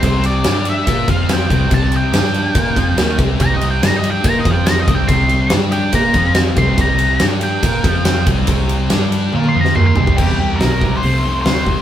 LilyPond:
<<
  \new Staff \with { instrumentName = "Lead electric guitar" } { \time 4/4 \key g \mixolydian \tempo 4 = 142 c''8 d''4 e''4 f''8 g''4 | a''8 g''2. r8 | \tuplet 3/2 { bes''8 ees''8 g''8 bes''8 ees''8 g''8 bes''8 ees''8 g''8 bes''8 ees''8 g''8 } | c'''4 r8 g''8 bes''4 r8 c'''8 |
bes''4 r8 g''4. g''8 r8 | r2 \tuplet 3/2 { r8 c'''8 bes''8 c'''8 c'''4 } | g'4 bes'4 c''4 c''4 | }
  \new Staff \with { instrumentName = "Distorted electric guitar" } { \time 4/4 \key g \mixolydian <c g c'>4 <g d' g'>4 <bes f' bes'>8 <f c' f'>4 <c g c'>8 | <c g c'>4 <g d' g'>4 <bes f' bes'>8 <f c' f'>8 <ees bes ees'>8 <c g c'>8 | <c g c'>4 <g d' g'>4 <bes f' bes'>8 <f c' f'>4 <c g c'>8 | <c g c'>4 <g d' g'>4 <bes f' bes'>8 <f c' f'>4 <c g c'>8 |
<c g c'>4 <g d' g'>4 <bes f' bes'>8 <f c' f'>4 <c g c'>8 | <c g c'>4 <g d' g'>4 <bes f' bes'>8 <f c' f'>8 <ees bes ees'>8 <c g c'>8 | <c g>8 <c g>8 <c a>8 <c g>8 <c a>8 <c a>8 <c g>8 <c g>8 | }
  \new Staff \with { instrumentName = "Fingered electric bass" } { \clef bass \time 4/4 \key g \mixolydian c,4 g,4 bes,8 f,4 c,8 | c,4 g,4 bes,8 f,8 ees,8 c,8 | c,4 g,4 bes,8 f,4 c,8 | c,4 g,4 bes,8 f,4 c,8 |
c,4 g,4 bes,8 f,4 c,8 | c,4 g,4 bes,8 f,8 ees,8 c,8 | e,4 b,,4 c,4 d,4 | }
  \new DrumStaff \with { instrumentName = "Drums" } \drummode { \time 4/4 <bd cymr>8 cymr8 <cymr sn>8 cymr8 <bd cymr>8 <bd cymr>8 <cymr sn>8 <bd cymr>8 | <bd cymr>8 cymr8 <cymr sn>8 cymr8 <bd cymr>8 <bd cymr>8 <cymr sn>8 <bd cymr>8 | <bd cymr>8 cymr8 <cymr sn>8 cymr8 <bd cymr>8 <bd cymr>8 <cymr sn>8 <bd cymr>8 | <bd cymr>8 cymr8 <cymr sn>8 cymr8 <bd cymr>8 <bd cymr>8 <cymr sn>8 <bd cymr>8 |
<bd cymr>8 cymr8 <cymr sn>8 cymr8 <bd cymr>8 <bd cymr>8 <cymr sn>8 <bd cymr>8 | <bd cymr>8 cymr8 <cymr sn>8 cymr8 tommh16 tommh8 sn16 toml8 tomfh16 bd16 | <cymc bd>4 <hho sn>8 bd8 hho4 <hho sn>8 bd8 | }
>>